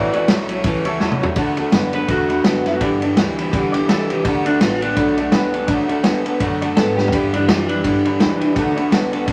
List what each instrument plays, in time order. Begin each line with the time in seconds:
Already playing: upright bass A1, steel-string acoustic guitar A2 E3 A3 C#4 F#4, clean electric guitar F#4 D5
0.13 clean electric guitar A2 E3 F#4 D5, steel-string acoustic guitar C#4 F#4, upright piano C#5 E5 A5, ride
0.17 steel-string acoustic guitar A3
0.28 upright bass B1, clean electric guitar A2 F#3 C#5, steel-string acoustic guitar E3 A3 C#4 F#4, upright piano C#5 E5 A5, snare, ride
0.49 clean electric guitar A2 F#3, steel-string acoustic guitar C#4 F#4, upright piano C#5 E5 A5, ride
0.53 steel-string acoustic guitar A3
0.64 upright bass C#2, steel-string acoustic guitar A2 E3 A3 C#4, upright piano C#5 E5 A5, kick, ride
0.68 steel-string acoustic guitar F#4
0.85 clean electric guitar A2 E3, steel-string acoustic guitar C#4 F#4, upright piano C#5 E5 A5, ride
0.89 steel-string acoustic guitar A3
1.00 upright bass E2, clean electric guitar A2 F#3, steel-string acoustic guitar E3 A3 C#4 F#4, upright piano C#5 E5 F#5 A5, snare
1.12 mid tom
1.20 clean electric guitar A2 F#3, steel-string acoustic guitar A3 C#4 F#4, upright piano C#5 E5 A5, muted upright bass stroke, floor tom
1.36 upright bass D2, steel-string acoustic guitar D3 A3 B3 F#4, upright piano D5 F#5 A5, kick, ride
1.57 clean electric guitar D3, steel-string acoustic guitar A3 B3 F#4, upright piano D5 F#5 A5, ride
1.72 upright bass F#2, steel-string acoustic guitar D3 A3 B3 F#4, upright piano D5 F#5 B5, snare, ride
1.93 clean electric guitar D3 B4, steel-string acoustic guitar A3 B3 F#4, upright piano D5 F#5 A5, ride
2.08 upright bass E2, steel-string acoustic guitar D3 A3 B3, clean electric guitar F#4, upright piano D5 F#5 A5, kick, ride
2.12 steel-string acoustic guitar F#4
2.29 clean electric guitar D3, steel-string acoustic guitar B3 F#4, upright piano D5 F#5 B5, ride
2.33 steel-string acoustic guitar A3
2.44 upright bass F#2, steel-string acoustic guitar D3 A3 B3 F#4, upright piano D5 F#5 A5, snare, ride
2.66 clean electric guitar D3 F#4, steel-string acoustic guitar B3 F#4, upright piano D5 F#5 A5, snare, ride
2.70 steel-string acoustic guitar A3
2.81 upright bass G2, steel-string acoustic guitar G2 D3 E3 G3 B3 E4, clean electric guitar D4, upright piano D5 G5 B5, kick, ride
3.02 clean electric guitar G2 D3, steel-string acoustic guitar E3 G3 B3 E4, upright piano D5 G5 A5, ride
3.16 upright bass D2, clean electric guitar G2, steel-string acoustic guitar E3 G3 B3, upright piano D5 G5 B5, snare, ride
3.20 steel-string acoustic guitar E4
3.37 clean electric guitar G2, steel-string acoustic guitar B3 E4, upright piano D5 G5 B5, ride
3.41 steel-string acoustic guitar E3 G3
3.51 upright bass B1, steel-string acoustic guitar G2 D3 E3 G3 B3 E4, upright piano D5 G5 B5, kick, ride
3.72 clean electric guitar G2 D3, steel-string acoustic guitar G3 B3 E4, upright piano D5 G5 D6, ride
3.77 steel-string acoustic guitar E3
3.87 upright bass C2, clean electric guitar G2 A4, steel-string acoustic guitar E3, upright piano D5 G5 B5, snare, ride
3.91 steel-string acoustic guitar G3 B3 E4
4.08 clean electric guitar G2 G4, steel-string acoustic guitar B3 E4, upright piano D5 G5 D6, ride
4.13 steel-string acoustic guitar E3 G3
4.24 upright bass D2, steel-string acoustic guitar D3 F#3 A3 B3 F#4, upright piano D5 F#5 A5, kick, ride
4.45 clean electric guitar D3 D4, steel-string acoustic guitar B3 F#4, upright piano D5 F#5 A5, ride
4.49 steel-string acoustic guitar A3
4.60 upright bass A1, clean electric guitar D3 F4, steel-string acoustic guitar F#3 A3 B3, upright piano D5 F#5 A5, snare, ride
4.64 steel-string acoustic guitar F#4
4.81 clean electric guitar D3 D4, steel-string acoustic guitar B3 F#4, upright piano D5 F#5 A5, ride
4.86 steel-string acoustic guitar A3
4.95 upright bass B1, steel-string acoustic guitar D3 F#3 A3 B3 F#4, upright piano D5 F#5 B5, kick, ride
5.17 clean electric guitar D3, steel-string acoustic guitar A3 B3 F#4, upright piano D5 F#5 A5, ride
5.32 upright bass C2, clean electric guitar D3, steel-string acoustic guitar F#3 A3 B3 F#4, upright piano D5 F#5 B5, snare, ride
5.53 clean electric guitar D3, steel-string acoustic guitar A3 B3 F#4, upright piano D5 F#5 A5, ride
5.67 upright bass D2, steel-string acoustic guitar D3 F#3 A3 B3 F#4, upright piano D5 F#5 A5, kick, ride
5.89 clean electric guitar D3, steel-string acoustic guitar A3 B3 F#4, upright piano D5 F#5 A5, ride
6.03 upright bass E2, clean electric guitar D3, steel-string acoustic guitar F#3 A3 B3 F#4, upright piano D5 F#5 A5, snare, ride
6.25 clean electric guitar D3, steel-string acoustic guitar A3 B3 F#4, upright piano D5 F#5 A5, muted upright bass stroke, ride
6.40 upright bass F#2, steel-string acoustic guitar D3 F#3 A3 B3 F#4, upright piano D5 F#5 A5, kick, ride
6.61 clean electric guitar D3, steel-string acoustic guitar A3 B3 F#4, upright piano D5 F#5 A5, ride
6.76 upright bass G#2, clean electric guitar D3 A4, steel-string acoustic guitar F#3 A3 B3 F#4, upright piano D5 F#5 A5, snare, ride
6.96 clean electric guitar D3 G4, steel-string acoustic guitar A3 B3 F#4, upright piano D5 F#5 A5, snare
7.08 floor tom
7.12 steel-string acoustic guitar G2 D3 E3 G3 B3 E4, upright bass G2, upright piano D5 G5 B5, kick, ride
7.33 clean electric guitar G2 D3 D4, steel-string acoustic guitar G3 B3 E4, upright piano D5 G5 B5, ride
7.37 steel-string acoustic guitar E3
7.47 clean electric guitar G2 F4, steel-string acoustic guitar E3 G3 B3, upright piano D5 G5 D6, snare, ride
7.52 steel-string acoustic guitar E4
7.68 clean electric guitar G2 D4, steel-string acoustic guitar E3 G3 B3 E4, upright piano D5 G5 B5, ride
7.84 upright bass G2, steel-string acoustic guitar G2 D3 E3 G3 B3 E4, upright piano D5 G5 B5, kick, ride
8.05 clean electric guitar G2 D3, steel-string acoustic guitar E3 G3 B3 E4, upright piano D5 G5 B5, ride
8.19 upright bass E2, clean electric guitar G2, steel-string acoustic guitar E3 G3 B3 E4, upright piano D5 G5 B5, snare, ride
8.40 clean electric guitar G2, steel-string acoustic guitar G3 B3 E4, upright piano D5 G5 B5, ride
8.45 steel-string acoustic guitar E3
8.55 upright bass D2, steel-string acoustic guitar D3 F#3 A3 B3, upright piano D5 F#5 A5, kick, ride
8.59 steel-string acoustic guitar F#4
8.76 clean electric guitar D3, steel-string acoustic guitar A3 B3 F#4, upright piano D5 F#5 B5, ride
8.90 upright bass C2, clean electric guitar D3, steel-string acoustic guitar F#3 A3 B3 F#4, upright piano D5 F#5 A5, snare, ride
9.11 clean electric guitar D3, steel-string acoustic guitar B3 F#4, upright piano D5 F#5 A5, ride
9.16 steel-string acoustic guitar A3
9.26 upright bass B1, steel-string acoustic guitar D3 F#3 A3, upright piano D5 F#5 A5, kick, ride